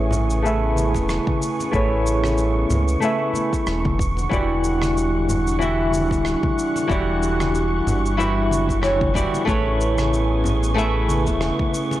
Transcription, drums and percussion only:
0.11 low conga, cabasa
0.30 cabasa
0.46 cabasa
0.76 high conga, cabasa
0.94 kick, muted conga, cabasa
1.09 cross-stick, cabasa
1.27 kick, high conga
1.42 cabasa
1.60 muted conga, cabasa
1.73 kick, cabasa
2.07 cabasa
2.24 cross-stick, high conga, cabasa
2.38 cabasa
2.70 low conga, cabasa
2.88 cabasa
3.02 cabasa
3.34 high conga, cabasa
3.53 kick, cabasa
3.67 cross-stick, cabasa
3.85 kick, high conga
3.99 kick, cabasa
4.17 muted conga, cabasa
4.31 kick, cabasa
4.64 cabasa
4.82 cross-stick, high conga, cabasa
4.98 cabasa
5.29 low conga, cabasa
5.47 cabasa
5.62 cabasa
5.92 high conga, cabasa
6.11 kick, muted conga, cabasa
6.25 cross-stick, cabasa
6.43 kick, high conga
6.59 cabasa
6.76 muted conga, cabasa
6.90 kick, cabasa
7.23 cabasa
7.40 cross-stick, high conga, cabasa
7.55 cabasa
7.87 low conga, cabasa
8.06 cabasa
8.20 cabasa
8.51 high conga, cabasa
8.69 kick, cabasa
8.83 cross-stick, cabasa
9.01 kick, high conga
9.15 kick, cabasa
9.34 muted conga, cabasa
9.48 kick, cabasa
9.81 cabasa
9.98 cross-stick, high conga, cabasa
10.14 cabasa
10.44 low conga, cabasa
10.63 cabasa
10.79 cabasa
11.09 high conga, cabasa
11.27 kick, muted conga, cabasa
11.41 cross-stick, cabasa
11.59 kick, high conga
11.74 cabasa
11.91 muted conga, cabasa

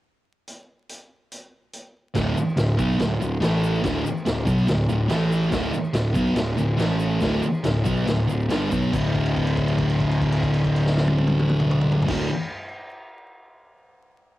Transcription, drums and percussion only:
0.47 closed hi-hat
0.89 closed hi-hat
1.32 closed hi-hat
1.73 closed hi-hat
2.15 kick, snare, crash, shaker
2.37 shaker
2.49 shaker
2.57 snare, crash, shaker
2.79 kick, shaker
2.91 shaker
3.00 snare, crash, shaker
3.22 shaker
3.42 snare, crash, shaker
3.64 shaker
3.75 shaker
3.84 kick, snare, crash, shaker
4.06 shaker
4.17 shaker
4.26 snare, crash, shaker
4.47 kick, shaker
4.58 shaker
4.68 snare, crash, shaker
4.89 shaker
5.10 snare, crash, shaker
5.32 shaker
5.43 shaker
5.52 kick, snare, crash, shaker
5.74 shaker
5.84 shaker
5.94 snare, crash, shaker
6.15 kick, shaker
6.26 shaker
6.36 snare, crash, shaker
6.58 shaker
6.79 snare, crash, shaker
7.00 shaker
7.10 shaker
7.20 kick, snare, crash, shaker
7.42 shaker
7.54 shaker
7.64 snare, crash, shaker
7.85 kick, shaker
7.97 shaker
8.07 snare, crash, shaker
8.29 shaker
8.40 shaker
8.50 snare, crash, shaker
8.72 kick, shaker
8.82 shaker
8.93 kick, crash, shaker
9.15 kick, crash
9.26 crash
9.36 kick, crash
9.47 crash
9.57 kick, crash
9.68 crash
9.78 kick, crash
9.90 crash
10.00 kick, crash
10.11 crash
10.22 kick, crash
10.32 crash
10.43 kick, crash
10.54 crash
10.64 kick, crash
10.76 crash
10.86 snare
10.97 snare
11.08 high tom
11.18 high tom
11.27 high tom
11.39 mid tom
11.49 mid tom
11.60 mid tom
11.71 mid tom
11.81 mid tom
11.92 floor tom
12.02 floor tom
12.08 kick, snare, crash

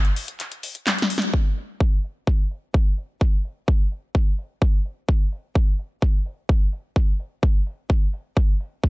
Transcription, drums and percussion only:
0.05 closed hi-hat
0.16 open hi-hat
0.28 closed hi-hat
0.40 clap, closed hi-hat
0.52 closed hi-hat
0.63 open hi-hat
0.75 closed hi-hat
0.87 snare, clap, closed hi-hat
0.98 snare, closed hi-hat
1.10 open hi-hat
1.18 snare, closed hi-hat
1.34 kick
1.57 open hi-hat
1.80 kick
2.04 open hi-hat
2.27 kick
2.51 open hi-hat
2.74 kick
2.98 open hi-hat
3.21 kick
3.44 open hi-hat
3.68 kick
3.91 open hi-hat
4.15 kick
4.38 open hi-hat
4.62 kick
4.85 open hi-hat
5.09 kick
5.32 open hi-hat
5.55 kick
5.79 open hi-hat
6.02 kick
6.26 open hi-hat
6.49 kick
6.73 open hi-hat
6.96 kick
7.19 open hi-hat
7.43 kick
7.66 open hi-hat
7.90 kick
8.13 open hi-hat
8.37 kick
8.60 open hi-hat
8.84 kick

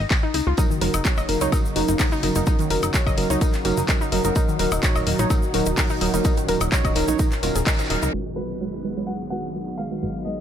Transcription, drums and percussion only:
0.11 kick, snare, clap, tambourine
0.34 open hi-hat, tambourine
0.57 kick, closed hi-hat, tambourine, shaker
0.71 shaker
0.81 snare, open hi-hat, tambourine
0.94 closed hi-hat, high woodblock, shaker
1.05 kick, snare, clap, closed hi-hat, tambourine, shaker
1.17 snare, high woodblock, shaker
1.29 open hi-hat, tambourine
1.41 closed hi-hat, shaker
1.52 kick, closed hi-hat, tambourine, high woodblock, shaker
1.65 shaker
1.76 open hi-hat, tambourine
1.88 closed hi-hat, shaker
1.99 kick, snare, clap, closed hi-hat, open hi-hat, shaker
2.12 shaker
2.23 open hi-hat, tambourine
2.35 closed hi-hat, shaker
2.47 kick, closed hi-hat, tambourine, shaker
2.59 closed hi-hat, shaker
2.70 open hi-hat, tambourine
2.83 closed hi-hat, high woodblock, shaker
2.94 kick, snare, clap, closed hi-hat, tambourine, shaker
3.07 kick, high woodblock, shaker
3.17 open hi-hat, tambourine
3.30 closed hi-hat, shaker
3.41 kick, closed hi-hat, tambourine, shaker
3.53 snare, clap, closed hi-hat, shaker
3.65 snare, open hi-hat, tambourine
3.77 snare, closed hi-hat, shaker
3.89 kick, snare, clap, closed hi-hat, tambourine, shaker
4.01 shaker
4.12 open hi-hat, tambourine
4.24 closed hi-hat, shaker
4.35 kick, closed hi-hat, tambourine, shaker
4.48 shaker
4.59 snare, open hi-hat, tambourine
4.72 closed hi-hat, high woodblock, shaker
4.83 kick, snare, clap, closed hi-hat, tambourine, shaker
4.95 snare, high woodblock, shaker
5.07 open hi-hat, tambourine
5.19 closed hi-hat, shaker
5.30 kick, closed hi-hat, tambourine, high woodblock, shaker
5.42 shaker
5.54 open hi-hat, tambourine
5.66 closed hi-hat, shaker
5.78 kick, snare, clap, closed hi-hat, open hi-hat, shaker
5.90 shaker
6.01 open hi-hat, tambourine
6.14 closed hi-hat, shaker
6.24 kick, closed hi-hat, tambourine, shaker
6.37 closed hi-hat, shaker
6.49 open hi-hat, tambourine
6.60 closed hi-hat, high woodblock, shaker
6.72 kick, snare, clap, closed hi-hat, tambourine, shaker
6.85 kick, closed hi-hat, high woodblock, shaker
6.95 snare, open hi-hat, tambourine
7.08 closed hi-hat, shaker
7.19 kick, closed hi-hat, tambourine, shaker
7.32 snare, clap, closed hi-hat, shaker
7.43 snare, open hi-hat, tambourine
7.55 snare, closed hi-hat, shaker
7.66 kick, snare, clap, closed hi-hat, tambourine, shaker
7.73 snare, tambourine
7.79 snare, closed hi-hat, tambourine, shaker
7.84 snare, tambourine
7.90 open hi-hat, tambourine
8.03 closed hi-hat, shaker
8.85 open hi-hat
9.32 open hi-hat

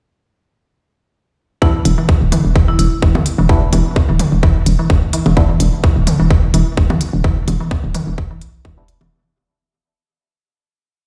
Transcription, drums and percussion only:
1.62 kick
1.85 open hi-hat
2.09 kick
2.32 open hi-hat, mid tom
2.56 kick
2.79 open hi-hat
3.02 kick
3.15 mid tom, low bongo
3.26 open hi-hat
3.49 kick
3.73 open hi-hat, low bongo
3.96 kick, low bongo
4.19 open hi-hat, mid tom
4.43 kick
4.66 open hi-hat
4.90 kick
5.13 open hi-hat
5.26 low bongo
5.37 kick
5.60 open hi-hat
5.84 kick
6.07 open hi-hat, mid tom
6.31 kick
6.54 open hi-hat
6.77 kick
6.90 mid tom, low bongo
7.01 open hi-hat
7.24 kick
7.48 open hi-hat, low bongo
7.71 kick, low bongo
7.95 open hi-hat, mid tom
8.18 kick
8.41 open hi-hat
8.65 kick
8.88 open hi-hat
9.01 low bongo

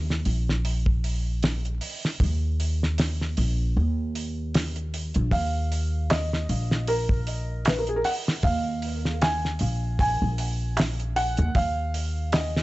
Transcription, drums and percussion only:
0.10 snare
0.25 open hi-hat
0.49 snare
0.65 open hi-hat
0.86 kick
1.04 open hi-hat
1.43 snare, open hi-hat
1.65 closed hi-hat
1.81 open hi-hat
2.05 snare
2.20 kick, open hi-hat
2.60 open hi-hat
2.83 snare
2.98 snare, open hi-hat
3.21 snare
3.37 open hi-hat
4.15 open hi-hat
4.54 snare, open hi-hat
4.76 closed hi-hat
4.94 open hi-hat
5.14 closed hi-hat
5.31 kick, open hi-hat
5.72 open hi-hat
6.10 snare, open hi-hat, darbuka tek
6.33 snare
6.49 open hi-hat
6.71 snare
6.88 open hi-hat
7.09 kick
7.27 open hi-hat
7.65 snare, open hi-hat, darbuka tek
7.87 closed hi-hat
8.04 open hi-hat
8.28 snare
8.43 kick, open hi-hat
8.82 open hi-hat
9.05 snare
9.22 snare, open hi-hat, darbuka tek
9.45 snare
9.59 open hi-hat
9.99 kick, open hi-hat
10.38 open hi-hat
10.77 snare, open hi-hat, darbuka tek
11.00 closed hi-hat
11.16 open hi-hat
11.37 closed hi-hat
11.55 kick, open hi-hat
11.94 open hi-hat
12.32 snare, open hi-hat, darbuka tek
12.57 snare

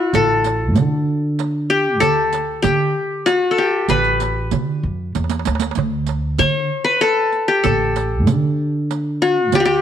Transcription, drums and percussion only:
0.14 riq, darbuka dum
0.31 darbuka ka
0.44 riq, darbuka tek
0.76 riq, darbuka dum
1.39 riq, darbuka tek
1.70 riq, darbuka ka
2.01 riq, darbuka dum
2.33 riq, darbuka tek
2.64 riq, darbuka dum
3.27 riq, darbuka tek
3.57 riq, darbuka ka
3.89 riq, darbuka dum
4.04 riq, darbuka ka
4.20 riq, darbuka tek
4.51 riq, darbuka dum
5.15 riq, darbuka tek
5.24 darbuka ka
5.30 riq, darbuka tek
5.39 darbuka ka
5.45 riq, darbuka tek
5.55 darbuka ka
5.60 riq, darbuka tek
5.71 riq, darbuka ka
5.79 darbuka dum
5.94 darbuka ka
6.07 riq, darbuka tek
6.38 riq, darbuka dum
7.01 riq, darbuka tek
7.32 riq, darbuka ka
7.64 riq, darbuka dum
7.81 darbuka ka
7.96 riq, darbuka tek
8.27 riq, darbuka dum
8.91 riq, darbuka tek
9.22 riq, darbuka ka
9.52 riq, darbuka dum
9.70 darbuka ka

